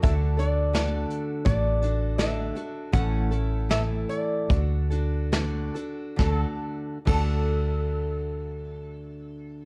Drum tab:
CC |--------|--------|--x-----|
HH |xxxxxxxx|xxxxxxxx|--------|
SD |--o---o-|--o---o-|o-------|
BD |o---o---|o---o---|o-o-----|